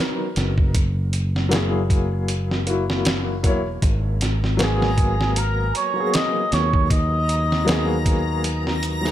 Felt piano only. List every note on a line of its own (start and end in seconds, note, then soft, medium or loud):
0.00 0.71 F#3 medium
0.00 0.72 B3 medium
0.00 0.73 D#4 medium
0.00 0.75 A#4 medium
1.49 2.62 F#3 medium
1.49 2.63 A#3 medium
1.53 2.64 E4 medium
1.53 2.65 G#4 medium
2.66 3.39 F#3 medium
2.66 3.40 A#3 medium
2.66 3.40 E4 medium
2.66 3.41 F#4 medium
3.43 3.66 F#3 medium
3.43 3.66 A#3 medium
3.43 3.67 E4 medium
3.43 3.67 C#5 loud
4.57 5.90 F#3 medium
4.57 5.91 A#3 medium
4.61 5.92 B3 medium
4.61 5.93 G#4 medium
5.94 7.62 F#3 medium
5.94 7.63 A#3 medium
5.98 7.64 B3 medium
5.98 7.65 G#4 medium
7.65 8.98 F#3 medium
7.65 8.99 A#3 medium
7.69 9.00 B3 medium
7.69 9.01 G#4 medium
9.01 9.12 F#3 medium
9.01 9.12 G#3 medium
9.05 9.12 B3 medium
9.05 9.12 G#4 medium